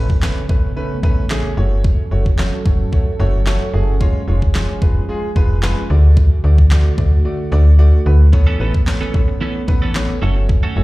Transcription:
Already playing: fm bass A1, analog synth pad C#3 A3 B3, grand piano A3 C#4 B4, impact
0.10 kick
0.22 grand piano A3 C#4 B4, snare, clap
0.49 fm bass A1, grand piano A3 C#4 B4, kick
0.76 grand piano A3 C#4 B4
1.03 fm bass A1, grand piano A3 C#4 B4, kick
1.30 grand piano A3 C#4 G#4, snare, clap
1.57 fm bass F#1, analog synth pad F#3 C#4 A4, grand piano A3 F#4 C#5
1.84 kick
2.11 fm bass F#1, grand piano A3 F#4 C#5
2.26 kick
2.38 grand piano A3 F#4 C#5, snare, clap
2.65 fm bass F#1, grand piano A3 F#4 C#5, kick
2.92 grand piano A3 F#4 C#5, kick
3.19 fm bass F#1, grand piano A3 F#4 C#5
3.46 grand piano A3 F#4 C#5 C#6, snare, clap
3.73 fm bass F#1, grand piano A3 F#4 G#4 F#5
4.00 analog synth pad F3 G#4, grand piano G#3 F4 C#5, kick
4.28 fm bass F1, grand piano G#3 F4 C#5
4.42 kick
4.54 grand piano G#3 F4 C#5, snare, clap
4.82 fm bass F1, grand piano G#3 F4 B4, kick
5.09 grand piano G#3 F4 G#4
5.36 fm bass F1, grand piano G#3 F4 B4, kick
5.63 grand piano G#3 F4 B4, snare, clap
5.90 fm bass D2, analog synth pad D3 A3 F#4, grand piano A3 F#4 D5
6.17 kick
6.44 fm bass D2, grand piano A3 F#4 D5
6.58 kick
6.71 grand piano A3 F#4 D5, snare, clap
6.98 fm bass D2, grand piano A3 F#4 D5, kick
7.25 grand piano A3 F#4 D5
7.51 fm bass D2, grand piano A3 F#4 D5
7.79 grand piano A3 F#4 D5
8.06 fm bass D2, grand piano A3 F#4 B4
8.33 grand piano B3 A4 C#5, analog synth pad B3 C#4, muted clean electric guitar stroke, kick
8.47 clean electric guitar E3 B3 C#4 A4
8.59 fm bass A1, clean electric guitar E3 B3 C#4 A4, grand piano B3 A4 B4
8.74 muted clean electric guitar stroke, kick
8.87 grand piano B3 A4 C#5, muted clean electric guitar stroke, snare, clap
9.01 clean electric guitar E3 B3 C#4 A4
9.14 fm bass A1, grand piano B3 A4 C#5, muted clean electric guitar stroke, kick
9.28 muted clean electric guitar stroke
9.41 clean electric guitar E3 B3 C#4 A4, grand piano B3 A4 C#5
9.55 muted clean electric guitar stroke
9.68 fm bass A1, grand piano B3 A4 B4, muted clean electric guitar stroke, kick
9.82 clean electric guitar E3 B3 C#4 A4
9.95 grand piano B3 A4 C#5, snare, clap
10.09 muted clean electric guitar stroke
10.22 fm bass F#1, analog synth pad F#3 A4, clean electric guitar A3 C#4 F#4 A4, grand piano A3 F#4 C#5
10.36 muted clean electric guitar stroke
10.49 muted clean electric guitar stroke, kick
10.63 clean electric guitar A3 C#4 F#4 A4
10.76 fm bass F#1, clean electric guitar A3 C#4 F#4 A4, grand piano A3 F#4 C#5

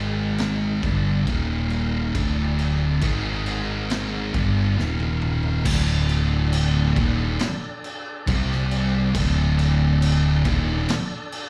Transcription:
Already playing: picked electric bass G#1, distorted electric guitar G#2 D#3 G#3, tonewheel organ G#3 D#4 A#4
0.38 snare, crash
0.83 picked electric bass G1, distorted electric guitar G2 D3 G3, tonewheel organ D4 A4 D5, kick, crash
1.27 picked electric bass D#1, distorted electric guitar D#2 A#2 D#3, tonewheel organ D#4 A#4 F5, kick, crash
1.70 crash
2.15 picked electric bass D1, distorted electric guitar D2 A2 D3, tonewheel organ D4 A4 D5, kick, crash
2.59 crash
3.01 picked electric bass G#1, distorted electric guitar G#2 D#3 G#3, tonewheel organ G#3 D#4, kick, crash
3.06 tonewheel organ A#4
3.46 crash
3.90 snare, crash
4.34 picked electric bass G1, distorted electric guitar G2 D3 G3, tonewheel organ D4 A4 D5, kick, crash
4.77 picked electric bass D#1, distorted electric guitar D#2 A#2 D#3, tonewheel organ D#4 A#4 F5, snare
5.00 high tom
5.22 mid tom
5.43 floor tom
5.65 picked electric bass D1, distorted electric guitar D2 A2 D3, tonewheel organ D4 A4 D5, kick, crash
6.09 crash
6.53 crash
6.96 picked electric bass D#1, distorted electric guitar D#2 A#2 D#3, kick, crash
7.39 snare, crash
7.84 crash
8.27 picked electric bass C2, distorted electric guitar C3 G3 C4, tonewheel organ C4 G4, kick, crash
8.51 snare
8.71 crash
9.15 picked electric bass D1, distorted electric guitar D2 A2 D3, tonewheel organ D4 A4 D5, kick, crash
9.59 crash
10.02 crash
10.45 picked electric bass D#1, distorted electric guitar D#2 A#2 D#3, kick, crash
10.89 snare, crash
11.32 crash

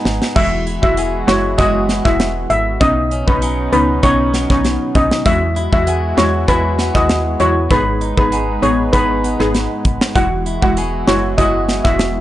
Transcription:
Already playing: clean electric guitar G#2 B3 D#4 G#4, analog synth pad G#3 D#4 B4
0.05 fm bass G#1, snare
0.22 snare
0.36 fm bass E1, clean electric guitar E3, synth pluck G#3 E4 F#4, analog synth pad G#3 E4 F#4, steel pan E5, kick, crash
0.67 clean electric guitar E4, closed hi-hat
0.82 fm bass E1, synth pluck G#3 E4 F#4, steel pan E5, kick
0.97 clean electric guitar B3 E4 G#4, closed hi-hat
1.27 fm bass F#1, synth pluck G#3 E4 F#4, steel pan C#5, cross-stick, snare, closed hi-hat
1.58 fm bass F#1, synth pluck G#3 E4 F#4, clean electric guitar B3 E4 G#4, steel pan D#5, kick, closed hi-hat
1.89 clean electric guitar B3, snare, closed hi-hat
2.05 fm bass E1, synth pluck G#3 E4 F#4, steel pan E5, kick, cross-stick
2.20 cross-stick, snare, closed hi-hat
2.50 fm bass G#1, steel pan E5, closed hi-hat
2.80 fm bass B1, clean electric guitar B2, synth pluck B3 C#4 D#4, analog synth pad B3 C#4 D#4, steel pan D#5, kick, closed hi-hat
3.11 clean electric guitar C#4, closed hi-hat
3.27 fm bass B1, synth pluck B3 C#4 D#4, steel pan B4, kick
3.42 clean electric guitar F#3 C#4 D#4, closed hi-hat
3.72 fm bass C#2, synth pluck B3 C#4 D#4, steel pan B4, closed hi-hat
4.03 fm bass B1, clean electric guitar F#3 C#4 D#4, synth pluck B3 C#4 D#4, steel pan C#5, kick, closed hi-hat
4.34 clean electric guitar F#3, snare, closed hi-hat
4.50 fm bass B1, synth pluck B3 C#4 D#4, steel pan C#5, kick, cross-stick
4.65 snare, closed hi-hat
4.95 fm bass B1, synth pluck B3 C#4 D#4, steel pan D#5, kick, closed hi-hat
5.11 cross-stick, snare
5.26 fm bass E2, synth pluck G#3 E4 F#4, analog synth pad G#3 E4 F#4, steel pan E5, kick, closed hi-hat
5.56 clean electric guitar E4, closed hi-hat
5.72 fm bass E2, synth pluck G#3 E4 F#4, steel pan E5, kick
5.87 clean electric guitar B3 E4 G#4, closed hi-hat
6.17 fm bass E2, synth pluck G#3 E4 F#4, steel pan C#5, cross-stick, snare, closed hi-hat
6.48 fm bass E2, synth pluck G#3 E4 F#4, clean electric guitar B3 E4 G#4, steel pan B4, kick, closed hi-hat
6.79 clean electric guitar B3, snare, closed hi-hat
6.95 fm bass D#2, synth pluck G#3 E4 F#4, steel pan D#5, kick, cross-stick
7.09 cross-stick, snare, closed hi-hat
7.40 fm bass E2, synth pluck G#3 E4 F#4, steel pan C#5, closed hi-hat
7.71 fm bass G#1, clean electric guitar G#2, synth pluck B3 D#4 G#4, analog synth pad D#4 B4, steel pan B4, kick, closed hi-hat
8.01 clean electric guitar D#4, closed hi-hat
8.17 fm bass G#1, synth pluck B3 D#4 G#4, steel pan B4, kick
8.32 clean electric guitar B3 D#4 G#4, closed hi-hat
8.62 fm bass A1, synth pluck B3 D#4 G#4, steel pan C#5, closed hi-hat
8.93 fm bass G#1, synth pluck B3 D#4 G#4, clean electric guitar B3 D#4 G#4, steel pan B4, kick, closed hi-hat
9.24 clean electric guitar B3, closed hi-hat
9.40 fm bass G#1, synth pluck B3 D#4 G#4, cross-stick
9.54 snare, closed hi-hat
9.85 fm bass G#1, kick, closed hi-hat
10.01 cross-stick, snare
10.15 fm bass E1, clean electric guitar E3, synth pluck G#3 E4 F#4, analog synth pad E4 F#4, steel pan F#5, kick, closed hi-hat
10.46 clean electric guitar E4, closed hi-hat
10.62 fm bass E1, synth pluck G#3 E4 F#4, steel pan F#5, kick
10.77 clean electric guitar B3 E4 G#4, closed hi-hat
11.07 fm bass F#1, synth pluck G#3 E4 F#4, steel pan C#5, cross-stick, snare, closed hi-hat
11.38 fm bass F#1, synth pluck G#3 E4 F#4, clean electric guitar B3 E4 G#4, steel pan D#5, kick, closed hi-hat
11.69 clean electric guitar B3, snare, closed hi-hat
11.84 fm bass E1, synth pluck G#3 E4 F#4, steel pan E5, kick, cross-stick
11.99 cross-stick, snare, closed hi-hat

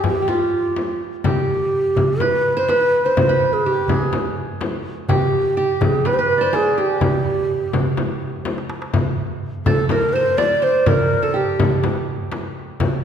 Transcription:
Already playing: qanun G4
0.04 ney G4, frame drum
0.22 qanun G4
0.28 qanun F4, ney F4, frame drum
0.76 frame drum
1.24 ney G4, qanun G4, frame drum, darbuka dum
1.49 darbuka ka
1.61 darbuka ka
1.73 darbuka ka
1.85 darbuka ka
1.96 darbuka dum, frame drum
2.20 ney B4, qanun B4, darbuka tek, frame drum
2.46 darbuka ka
2.57 qanun C5, ney C5
2.69 ney B4, qanun B4, darbuka tek, frame drum
2.81 darbuka ka
3.05 ney C5, qanun C5
3.17 frame drum, darbuka dum
3.29 qanun B4
3.42 darbuka ka
3.53 ney G#4, darbuka ka
3.65 ney G4, qanun G4, darbuka ka
3.77 darbuka ka
3.88 qanun G#4, darbuka dum, frame drum
4.01 darbuka ka
4.13 darbuka tek, frame drum
4.37 darbuka ka
4.61 darbuka tek, frame drum
4.73 darbuka ka
5.09 qanun G4, ney G4, darbuka dum, frame drum
5.33 darbuka ka
5.46 darbuka ka
5.57 qanun G4, darbuka ka
5.70 darbuka ka
5.81 ney G#4, darbuka dum, frame drum
5.93 darbuka ka
6.05 qanun B4, ney B4, darbuka tek, frame drum
6.14 ney C5
6.19 qanun B4, ney B4
6.30 darbuka ka
6.38 qanun C5 D5
6.42 ney C5
6.53 qanun G#4, ney G#4, darbuka tek, frame drum
6.66 darbuka ka
6.78 qanun G4, ney G4
7.01 darbuka dum, frame drum
7.50 darbuka ka
7.73 frame drum, darbuka dum
7.97 darbuka tek, frame drum
8.22 darbuka ka
8.45 darbuka tek, frame drum
8.58 darbuka ka
8.70 darbuka tek
8.82 darbuka ka
8.94 frame drum, darbuka dum
9.19 darbuka ka
9.55 darbuka ka
9.66 ney A4, qanun A4, frame drum, darbuka dum
9.89 ney A#4, qanun A#4, darbuka tek, frame drum
10.08 qanun A#4
10.13 ney C5, qanun C5
10.38 ney D5, qanun D5, darbuka tek, frame drum
10.62 qanun C5, ney C5
10.86 qanun A#4, ney A#4, frame drum, darbuka dum
11.11 darbuka ka
11.23 qanun A4, ney A4
11.34 qanun G4, ney G4
11.47 darbuka ka
11.60 frame drum, darbuka dum
11.84 darbuka tek, frame drum
12.32 darbuka tek, frame drum
12.80 darbuka dum, frame drum

